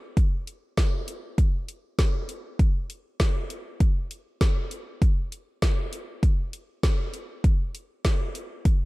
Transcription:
0.17 kick loud
0.17 closed hi-hat medium
0.47 closed hi-hat medium
0.77 kick loud
0.77 snare loud
0.77 closed hi-hat medium
1.08 closed hi-hat medium
1.38 kick loud
1.38 closed hi-hat medium
1.68 closed hi-hat medium
1.99 kick loud
1.99 snare loud
1.99 closed hi-hat medium
2.29 closed hi-hat medium
2.59 kick loud
2.59 closed hi-hat medium
2.90 closed hi-hat medium
3.20 kick loud
3.20 snare loud
3.20 closed hi-hat medium
3.50 closed hi-hat medium
3.80 kick loud
3.80 closed hi-hat medium
4.11 closed hi-hat medium
4.41 kick loud
4.41 snare loud
4.41 closed hi-hat medium
4.71 closed hi-hat medium
5.02 kick loud
5.02 closed hi-hat medium
5.32 closed hi-hat medium
5.62 kick loud
5.62 snare loud
5.62 closed hi-hat medium
5.93 closed hi-hat medium
6.23 kick loud
6.23 closed hi-hat medium
6.53 closed hi-hat medium
6.83 kick loud
6.83 snare loud
6.83 closed hi-hat medium
7.14 closed hi-hat medium
7.44 kick loud
7.44 closed hi-hat medium
7.75 closed hi-hat medium
8.05 kick loud
8.05 snare loud
8.05 closed hi-hat medium
8.35 closed hi-hat medium
8.65 kick loud
8.65 closed hi-hat medium

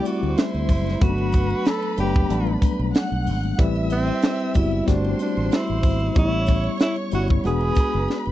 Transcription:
0.00 1.04 G3 medium
0.00 1.01 A3 medium
0.00 1.04 C4 medium
0.00 1.04 E4 loud
0.00 0.34 D5 loud
0.00 0.33 D6 medium
0.05 0.40 F#4 medium
0.05 closed hi-hat medium
0.05 triangle medium
0.23 0.34 D2 loud
0.23 muted triangle soft
0.37 1.04 E4 medium
0.37 1.00 C5 medium
0.37 1.00 C6 medium
0.37 snare loud
0.37 closed hi-hat medium
0.37 muted triangle soft
0.54 0.66 D2 medium
0.54 muted triangle soft
0.69 0.95 F#1 loud
0.69 kick medium
0.69 open hi-hat medium
0.69 triangle medium
0.87 snare soft
0.87 muted triangle soft
1.01 1.52 G1 loud
1.01 1.80 F#3 medium
1.01 1.80 A3 medium
1.01 1.80 B3 medium
1.01 1.09 C#4 medium
1.01 1.69 F#4 loud
1.01 2.90 B4 loud
1.01 2.90 B5 loud
1.01 kick loud
1.01 closed hi-hat medium
1.01 muted triangle soft
1.09 1.84 D4 medium
1.18 muted triangle medium
1.32 kick medium
1.32 closed hi-hat medium
1.32 triangle medium
1.50 muted triangle medium
1.64 1.99 A4 loud
1.64 snare loud
1.64 closed hi-hat loud
1.64 muted triangle soft
1.83 muted triangle medium
1.97 2.23 F#1 medium
1.97 2.24 F#3 medium
1.97 2.24 A3 medium
1.97 2.25 B3 medium
1.97 2.25 D4 medium
1.97 2.59 G4 medium
1.97 closed hi-hat medium
1.97 triangle medium
2.15 kick loud
2.15 muted triangle medium
2.29 2.56 A1 loud
2.29 3.33 G3 medium
2.29 3.34 A3 medium
2.29 3.34 B3 medium
2.29 3.34 D4 medium
2.29 closed hi-hat medium
2.29 muted triangle medium
2.47 muted triangle medium
2.62 kick medium
2.62 closed hi-hat medium
2.62 triangle medium
2.79 2.91 B1 medium
2.79 muted triangle soft
2.94 3.57 F#5 medium
2.94 3.57 F#6 medium
2.94 snare loud
2.94 closed hi-hat loud
2.94 muted triangle medium
3.12 3.28 B1 medium
3.12 muted triangle soft
3.27 3.52 G#1 medium
3.27 open hi-hat medium
3.27 triangle medium
3.44 muted triangle soft
3.58 4.10 A1 loud
3.58 4.37 G3 medium
3.58 4.37 C4 medium
3.58 4.38 E4 medium
3.58 4.37 B4 medium
3.58 4.85 E5 medium
3.58 4.85 E6 loud
3.58 kick loud
3.58 closed hi-hat medium
3.58 muted triangle soft
3.76 muted triangle medium
3.90 4.58 C4 loud
3.90 closed hi-hat medium
3.90 triangle medium
4.07 muted triangle soft
4.22 snare loud
4.22 closed hi-hat medium
4.22 muted triangle soft
4.40 muted triangle medium
4.54 4.81 F#1 medium
4.54 4.81 G3 medium
4.54 4.81 B3 medium
4.54 4.82 C4 medium
4.54 4.91 E4 medium
4.54 4.82 F#4 medium
4.54 kick medium
4.54 closed hi-hat medium
4.54 triangle medium
4.72 muted triangle soft
4.87 5.13 G1 loud
4.87 5.91 G3 medium
4.87 5.91 A3 medium
4.87 5.91 C4 medium
4.87 5.21 D4 loud
4.87 5.91 F#4 medium
4.87 6.13 C5 medium
4.87 6.13 C6 medium
4.87 kick medium
4.87 snare soft
4.87 closed hi-hat medium
4.87 muted triangle medium
5.05 muted triangle medium
5.19 5.56 D4 medium
5.19 closed hi-hat medium
5.19 triangle medium
5.37 5.49 A1 medium
5.37 muted triangle soft
5.51 6.17 E4 loud
5.51 snare loud
5.51 closed hi-hat loud
5.51 muted triangle medium
5.68 5.81 A1 medium
5.68 muted triangle soft
5.83 6.09 G#1 medium
5.83 kick medium
5.83 open hi-hat medium
5.83 triangle medium
6.00 muted triangle soft
6.15 6.67 A1 loud
6.15 6.94 G3 medium
6.15 6.94 B3 medium
6.15 6.94 C#4 medium
6.15 6.95 E4 medium
6.15 6.77 E4 loud
6.15 7.42 C#5 medium
6.15 7.42 C#6 medium
6.15 kick loud
6.15 closed hi-hat medium
6.15 muted triangle soft
6.33 muted triangle medium
6.46 kick medium
6.46 closed hi-hat medium
6.46 triangle medium
6.64 muted triangle medium
6.78 snare loud
6.78 closed hi-hat loud
6.78 muted triangle medium
6.82 6.96 E4 loud
6.96 muted triangle medium
7.11 7.38 G1 loud
7.11 7.38 G3 medium
7.11 7.39 B3 medium
7.11 7.39 C#4 medium
7.11 7.39 E4 medium
7.11 7.29 F#4 medium
7.11 closed hi-hat medium
7.11 triangle medium
7.28 kick medium
7.28 muted triangle soft
7.44 7.70 E1 loud
7.44 8.32 G#3 medium
7.44 8.32 B3 medium
7.44 8.32 D4 medium
7.44 8.32 F#4 medium
7.44 8.32 G#4 loud
7.44 8.32 B4 medium
7.44 8.32 B5 loud
7.44 closed hi-hat medium
7.44 muted triangle medium
7.61 muted triangle medium
7.75 kick medium
7.75 closed hi-hat medium
7.75 triangle medium
7.94 8.06 F#1 loud
7.94 muted triangle soft
8.08 snare medium
8.08 muted triangle soft
8.26 8.32 F#1 medium
8.26 muted triangle soft

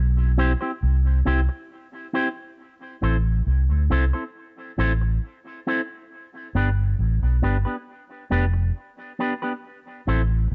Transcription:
0.00 0.53 B1 medium
0.38 0.51 C4 medium
0.38 0.52 E4 medium
0.38 0.52 G4 medium
0.38 0.52 C5 medium
0.61 0.71 C4 medium
0.61 0.71 E4 soft
0.61 0.71 G4 medium
0.61 0.70 C5 medium
0.83 1.21 C2 medium
1.25 1.46 C2 medium
1.25 1.39 C4 medium
1.25 1.40 E4 medium
1.25 1.40 G4 medium
1.25 1.40 C5 medium
1.49 muted clean electric guitar stroke soft
2.13 2.27 C4 medium
2.13 2.27 E4 medium
2.13 2.28 G4 medium
2.13 2.28 C5 loud
3.02 3.41 A1 medium
3.02 3.15 C4 medium
3.02 3.16 E4 medium
3.02 3.16 A4 medium
3.02 3.16 C5 medium
3.47 3.67 C2 medium
3.70 3.88 D2 medium
3.90 4.11 C2 medium
3.90 4.04 C4 medium
3.90 4.04 E4 medium
3.90 4.04 A4 medium
3.90 4.04 C5 medium
4.13 4.24 C4 soft
4.13 4.23 E4 medium
4.13 4.23 A4 medium
4.13 4.23 C5 medium
4.78 5.17 A1 medium
4.78 4.91 C4 medium
4.78 4.92 E4 medium
4.78 4.92 A4 medium
4.78 4.92 C5 loud
5.01 muted clean electric guitar stroke soft
5.67 5.80 C4 medium
5.67 5.80 E4 medium
5.67 5.81 A4 medium
5.67 5.81 C5 medium
6.55 6.93 G1 medium
6.55 6.68 B3 medium
6.55 6.69 D4 medium
6.55 6.69 G4 medium
6.55 6.69 B4 medium
6.99 7.19 A1 medium
7.22 7.40 B1 medium
7.42 7.63 G1 medium
7.42 7.56 B3 medium
7.42 7.56 D4 medium
7.42 7.57 G4 medium
7.42 7.57 B4 medium
7.65 7.76 B3 soft
7.65 7.75 D4 soft
7.65 7.75 G4 medium
7.65 7.75 B4 medium
8.30 8.70 F1 loud
8.30 8.44 B3 medium
8.30 8.44 D4 medium
8.30 8.45 G4 loud
8.30 8.45 B4 loud
8.54 muted clean electric guitar stroke soft
9.19 9.32 B3 medium
9.19 9.33 D4 medium
9.19 9.33 G4 medium
9.19 9.33 B4 loud
9.42 9.52 B3 medium
9.42 9.52 D4 medium
9.42 9.52 G4 medium
9.42 9.52 B4 medium
10.07 10.46 A1 loud
10.07 10.21 C4 medium
10.07 10.21 E4 medium
10.07 10.21 A4 medium
10.07 10.22 C5 medium
10.51 10.55 C2 loud

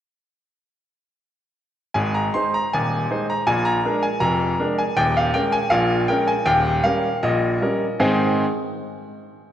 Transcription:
1.94 2.27 G#1 medium
1.94 2.27 G#2 medium
1.94 2.13 G#5 medium
2.14 2.33 A#5 medium
2.34 2.54 G#3 soft
2.34 2.55 D#4 soft
2.34 2.55 C5 soft
2.34 2.52 C6 medium
2.54 2.72 A#5 medium
2.73 3.04 D#1 medium
2.73 3.04 D#2 medium
2.73 3.26 G#5 medium
3.11 3.31 G#3 soft
3.11 3.31 D#4 soft
3.11 3.31 C5 soft
3.30 3.47 A#5 medium
3.47 3.79 A#1 medium
3.47 3.79 A#2 medium
3.47 3.65 G#5 medium
3.65 4.01 A#5 medium
3.84 4.05 G#3 soft
3.84 4.05 D4 soft
3.84 4.06 A#4 soft
4.03 4.21 G#5 medium
4.20 4.53 F1 medium
4.20 4.53 F2 medium
4.20 4.66 A#5 medium
4.59 4.80 G#3 soft
4.59 4.80 D4 soft
4.59 4.80 A#4 soft
4.78 4.97 G#5 medium
4.97 5.29 D#1 medium
4.97 5.29 D#2 medium
4.97 5.16 G5 loud
5.17 5.35 F5 medium
5.34 5.55 G#3 soft
5.34 5.55 C#4 soft
5.34 5.55 A#4 soft
5.34 5.53 G5 medium
5.52 5.72 G#5 medium
5.70 6.04 A#1 medium
5.70 6.04 A#2 medium
5.70 6.07 F5 medium
6.08 6.30 G#3 soft
6.08 6.31 C#4 soft
6.08 6.31 A#4 medium
6.08 6.28 G5 medium
6.28 6.47 G#5 medium
6.46 6.80 D#1 medium
6.46 6.79 D#2 medium
6.46 6.83 G5 loud
6.84 7.06 G3 soft
6.84 7.06 C#4 soft
6.84 7.06 A#4 soft
6.84 7.21 F5 medium
7.23 7.57 A#1 medium
7.23 7.56 A#2 medium
7.23 7.97 D#5 medium
7.61 7.83 G3 soft
7.61 7.83 C#4 soft
7.61 7.84 A#4 soft
8.00 8.43 G#2 medium
8.00 8.43 D#3 medium
8.00 8.43 C4 medium
8.00 8.43 D#4 medium
8.00 8.43 G#4 medium
8.00 8.43 C5 medium
8.00 8.43 G#5 medium

